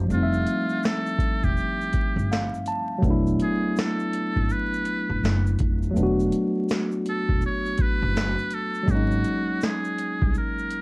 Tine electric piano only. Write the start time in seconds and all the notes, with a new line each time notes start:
0.05 F3 G3
0.11 A3 C4
0.17 D#4
0.23 E5
2.31 F5
2.68 A5
2.98 F#3 A3
3.04 B3 D4
3.10 E4
5.91 F#3 A3
5.96 B3 D4
6.03 F#4
8.83 F#3 G#3
8.89 A#3 C#4
8.95 D#4